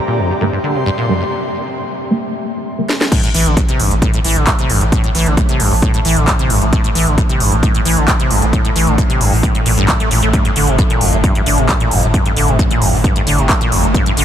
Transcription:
Already playing: synth drone C3, synth stab D3 G3 A#3, analog synth pad G4 D5 A#5
0.08 acid bass A#2
0.19 acid bass F2
0.30 acid bass G2
0.41 acid bass G2, synth stab D3 G3 A#3
0.46 analog synth pad C6
0.53 acid bass G2
0.64 acid bass D3
0.75 acid bass C3
0.86 acid bass G2
0.98 acid bass A#2
1.09 acid bass F2, synth stab D3 G3 A#3
1.20 acid bass G2
2.11 synth stab D3 G3 A#3
2.78 synth stab D3 G3 A#3
2.89 snare
3.01 snare
3.12 synth drone A2, acid bass A2, kick, closed hi-hat, crash
3.23 acid bass A2, closed hi-hat
3.34 sub bass A1, acid bass E3, open hi-hat
3.46 sub bass A1, acid bass D3, closed hi-hat
3.57 acid bass A2, kick, closed hi-hat
3.68 acid bass C3, closed hi-hat
3.79 sub bass A1, acid bass G2, open hi-hat
3.91 sub bass A1, acid bass A2, closed hi-hat
4.02 acid bass A2, kick, closed hi-hat
4.14 acid bass A2, closed hi-hat
4.24 sub bass A1, acid bass E3, open hi-hat
4.36 sub bass A1, acid bass D3, closed hi-hat
4.47 acid bass A2, kick, clap, closed hi-hat
4.59 acid bass C3, closed hi-hat
4.70 sub bass A1, acid bass G2, open hi-hat
4.81 sub bass A1, acid bass A2, closed hi-hat
4.92 acid bass A2, kick, closed hi-hat
5.04 acid bass A2, closed hi-hat
5.15 sub bass A1, acid bass E3, open hi-hat
5.26 sub bass A1, acid bass D3, closed hi-hat
5.37 acid bass A2, kick, closed hi-hat
5.49 acid bass C3, closed hi-hat
5.60 sub bass A1, acid bass G2, open hi-hat
5.71 sub bass A1, acid bass A2, open hi-hat
5.82 acid bass A2, kick, closed hi-hat
5.94 acid bass A2, closed hi-hat
6.05 sub bass A1, acid bass E3, open hi-hat
6.16 sub bass A1, acid bass D3, closed hi-hat
6.27 acid bass A2, kick, clap, closed hi-hat
6.39 acid bass C3, closed hi-hat
6.50 sub bass A1, acid bass G2, open hi-hat
6.62 sub bass A1, acid bass A2, closed hi-hat
6.73 acid bass A2, kick, closed hi-hat
6.84 acid bass A2, closed hi-hat
6.95 sub bass A1, acid bass E3, open hi-hat
7.07 sub bass A1, acid bass D3, closed hi-hat
7.18 acid bass A2, kick, closed hi-hat
7.29 acid bass C3, closed hi-hat
7.40 sub bass A1, acid bass G2, open hi-hat
7.52 sub bass A1, acid bass A2, closed hi-hat
7.63 acid bass A2, kick, closed hi-hat
7.74 acid bass A2, closed hi-hat
7.85 sub bass A1, acid bass E3, open hi-hat
7.97 sub bass A1, acid bass D3, closed hi-hat
8.08 acid bass A2, kick, clap, closed hi-hat
8.20 acid bass C3, closed hi-hat
8.30 sub bass A1, acid bass G2, open hi-hat
8.42 sub bass A1, acid bass A2, closed hi-hat
8.53 acid bass A2, kick, closed hi-hat
8.65 acid bass A2, closed hi-hat
8.75 sub bass A1, acid bass E3, open hi-hat
8.87 sub bass A1, acid bass D3, closed hi-hat
8.98 acid bass A2, kick, closed hi-hat
9.10 acid bass C3, closed hi-hat
9.21 sub bass A1, acid bass G2, open hi-hat
9.32 sub bass A1, acid bass A2, open hi-hat
9.43 acid bass A2, kick, closed hi-hat
9.55 acid bass A2, closed hi-hat
9.66 sub bass A1, acid bass A#2, open hi-hat
9.77 sub bass A1, acid bass G2, closed hi-hat
9.88 acid bass G2, kick, clap, closed hi-hat
10.00 acid bass A3, closed hi-hat
10.11 sub bass A1, acid bass A#2, open hi-hat
10.22 sub bass A1, acid bass A3, closed hi-hat
10.33 acid bass G2, kick, closed hi-hat
10.45 acid bass G2, closed hi-hat
10.56 sub bass G1, acid bass D3, open hi-hat
10.67 sub bass G1, acid bass C3, closed hi-hat
10.78 acid bass G2, kick, closed hi-hat
10.90 acid bass A#2, closed hi-hat
11.01 sub bass G1, acid bass F2, open hi-hat
11.13 sub bass G1, acid bass G2, closed hi-hat
11.24 acid bass G2, kick, closed hi-hat
11.35 acid bass G2, closed hi-hat
11.46 sub bass G1, acid bass D3, open hi-hat
11.58 sub bass G1, acid bass C3, closed hi-hat
11.69 acid bass G2, kick, clap, closed hi-hat
11.80 acid bass A#2, closed hi-hat
11.91 sub bass G1, acid bass F2, open hi-hat
12.03 sub bass G1, acid bass G2, closed hi-hat
12.14 acid bass G2, kick, closed hi-hat
12.26 acid bass G2, closed hi-hat
12.37 sub bass G1, acid bass D3, open hi-hat
12.48 sub bass G1, acid bass C3, closed hi-hat
12.59 acid bass G2, kick, closed hi-hat
12.71 acid bass A#2, closed hi-hat
12.82 sub bass G1, acid bass F2, open hi-hat
12.93 sub bass G1, acid bass G2, open hi-hat
13.04 acid bass G2, kick, closed hi-hat
13.16 acid bass G2, closed hi-hat
13.27 sub bass G1, acid bass D3, open hi-hat
13.38 sub bass G1, acid bass C3, closed hi-hat
13.49 acid bass G2, kick, clap, closed hi-hat
13.61 acid bass A#2, closed hi-hat
13.72 sub bass G1, acid bass F2, open hi-hat
13.84 sub bass G1, acid bass G2, closed hi-hat
13.94 acid bass G2, kick, closed hi-hat
14.06 acid bass G2, closed hi-hat
14.17 sub bass G1, acid bass D3, open hi-hat

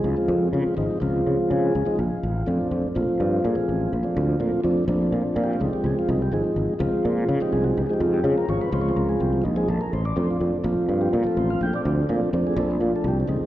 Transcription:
Already playing: tonewheel organ G#3 C4 D#4
0.04 fretless electric bass C#2, tonewheel organ F4
0.16 tonewheel organ F3 G#3 C4 F4
0.28 fretless electric bass F2
0.53 fretless electric bass C#3, tonewheel organ F3 G#3 C4 F4
0.66 muted fretless electric bass stroke
0.77 fretless electric bass G#1, tonewheel organ F3 G#3 C4 D#4
1.00 fretless electric bass C#2, tonewheel organ F3 G#3 C4 F4
1.27 fretless electric bass C#3
1.51 fretless electric bass C#3, tonewheel organ G#4
1.75 fretless electric bass C#2
1.86 tonewheel organ F3 G#3 C4 D#4, muted fretless electric bass stroke
1.99 fretless electric bass A#1, tonewheel organ F4
2.23 fretless electric bass A1
2.46 fretless electric bass F2, tonewheel organ F3 A3 C4 D4
2.71 fretless electric bass F2
2.84 muted fretless electric bass stroke
2.95 fretless electric bass A#1, tonewheel organ F3 A3 C4 F4
3.08 muted fretless electric bass stroke
3.20 fretless electric bass G2
3.45 fretless electric bass A#2, tonewheel organ G#4
3.55 tonewheel organ F3 A3 C4 F4, muted fretless electric bass stroke
3.69 fretless electric bass A1
3.93 fretless electric bass A#1, tonewheel organ F4
4.03 tonewheel organ F3 A3 C4 D4
4.17 fretless electric bass D2
4.40 fretless electric bass A#2, tonewheel organ F3 A3 C4 F4
4.52 muted fretless electric bass stroke
4.64 fretless electric bass F2, tonewheel organ F3 A3 C4 D4
4.88 fretless electric bass A#1, tonewheel organ F3 A3 C4 D4
5.12 fretless electric bass A#2
5.36 fretless electric bass A#2, tonewheel organ F4
5.44 tonewheel organ G4
5.53 tonewheel organ F4
5.60 fretless electric bass C#2, tonewheel organ F3 G#3 C4 D#4
5.73 tonewheel organ G4, muted fretless electric bass stroke
5.84 fretless electric bass C#2, tonewheel organ G#4
5.99 tonewheel organ F4
6.09 fretless electric bass C2, tonewheel organ D#4
6.22 tonewheel organ G4
6.32 fretless electric bass G#1, tonewheel organ F3 G#3 C4 D#4 G#4
6.44 tonewheel organ C4
6.56 fretless electric bass G#1
6.69 muted fretless electric bass stroke
6.79 fretless electric bass C#2, tonewheel organ F3 G#3 C4 F4
6.93 muted fretless electric bass stroke
7.05 fretless electric bass A#2
7.29 fretless electric bass C#3, tonewheel organ F4
7.41 tonewheel organ F3 G#3 C4 D#4 G4, muted fretless electric bass stroke
7.53 fretless electric bass C2, tonewheel organ G#4
7.64 tonewheel organ F#4
7.77 fretless electric bass C#2, tonewheel organ G4
7.86 tonewheel organ F3 G#3 C4 G#4
7.91 tonewheel organ D#4 G4
8.00 fretless electric bass F2, tonewheel organ F4
8.14 tonewheel organ G4
8.24 fretless electric bass C#3, tonewheel organ F3 G#3 C4 F4 G#4
8.36 tonewheel organ A#4, muted fretless electric bass stroke
8.48 fretless electric bass G#1, tonewheel organ F3 G#3 C4 F4 C#5
8.61 tonewheel organ B4
8.72 fretless electric bass C#2, tonewheel organ F3 G#3 C4 F4 C5
8.81 tonewheel organ C#5
8.89 tonewheel organ C5
8.96 fretless electric bass C#2, tonewheel organ A#4
9.09 tonewheel organ G#4
9.20 fretless electric bass C2, tonewheel organ G4
9.33 tonewheel organ C4
9.44 fretless electric bass A#1, tonewheel organ D#4
9.56 tonewheel organ F3 G#3 C4 D#4 G#4
9.68 fretless electric bass A#1, tonewheel organ A4
9.81 tonewheel organ A#4
9.93 fretless electric bass A1, tonewheel organ C5
10.05 tonewheel organ D5
10.16 fretless electric bass F2, tonewheel organ F3 A3 C4 D4 C5
10.31 tonewheel organ F4
10.40 fretless electric bass F2
10.53 muted fretless electric bass stroke
10.64 fretless electric bass A#1, tonewheel organ F3 A3 C4 F4
10.78 muted fretless electric bass stroke
10.89 fretless electric bass G2
11.01 tonewheel organ G4
11.13 fretless electric bass A#2, tonewheel organ F4
11.24 tonewheel organ F3 A3 C4 F4 A4, muted fretless electric bass stroke
11.37 fretless electric bass A1, tonewheel organ C5
11.50 tonewheel organ F5
11.61 fretless electric bass A#1, tonewheel organ G5
11.73 tonewheel organ F3 A3 C4 D4 D5
11.85 fretless electric bass D2
12.09 fretless electric bass A#2, tonewheel organ F3 A3 C4 D4
12.21 muted fretless electric bass stroke
12.33 fretless electric bass F2, tonewheel organ F3 A3 C4 D4
12.47 tonewheel organ G#4
12.56 fretless electric bass A#1, tonewheel organ F3 A3 C4 D4 A4
12.71 tonewheel organ C4
12.80 fretless electric bass A#2, tonewheel organ F4
12.96 tonewheel organ A4
13.04 fretless electric bass C2, tonewheel organ G4
13.20 tonewheel organ C4
13.28 fretless electric bass C#2, tonewheel organ F3 G#3 C4 D#4
13.41 muted fretless electric bass stroke

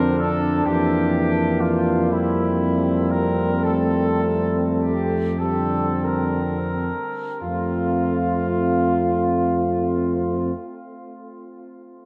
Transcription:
Already playing: tuba F2, euphonium D3, trombone C4, flugelhorn D4, trumpet section A#4
0.19 trumpet section A4
0.65 tuba F2, euphonium E3, trombone A#3, trumpet section G4
1.61 trumpet section F4
2.10 euphonium G3, flugelhorn C4, trumpet section E4
3.11 trumpet section A#4
3.64 trombone A3, trumpet section A4
4.78 trumpet section G4
5.39 euphonium D3, trombone G3, flugelhorn C4, trumpet section A4
6.03 trumpet section A#4
7.42 tuba F2, trombone A3, euphonium C4, trumpet section F4, flugelhorn F4

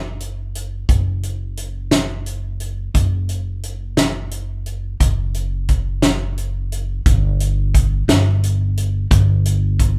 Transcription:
Already playing: upright bass F#1
0.20 closed hi-hat
0.55 closed hi-hat
0.89 upright bass F#1, kick, closed hi-hat
1.23 closed hi-hat
1.57 closed hi-hat
1.91 snare, closed hi-hat
2.26 closed hi-hat
2.60 closed hi-hat
2.94 upright bass F#1, kick, closed hi-hat
3.29 closed hi-hat
3.63 closed hi-hat
3.97 snare, closed hi-hat
4.31 closed hi-hat
4.66 closed hi-hat
5.00 upright bass F#1, kick, closed hi-hat
5.34 closed hi-hat
5.68 kick, closed hi-hat
6.02 snare, closed hi-hat
6.38 closed hi-hat
6.72 closed hi-hat
7.06 upright bass G1, kick, closed hi-hat
7.40 closed hi-hat
7.75 kick, closed hi-hat
8.08 upright bass G1, snare, closed hi-hat
8.43 closed hi-hat
8.77 closed hi-hat
9.11 upright bass G1, kick, closed hi-hat
9.45 closed hi-hat
9.80 kick, closed hi-hat

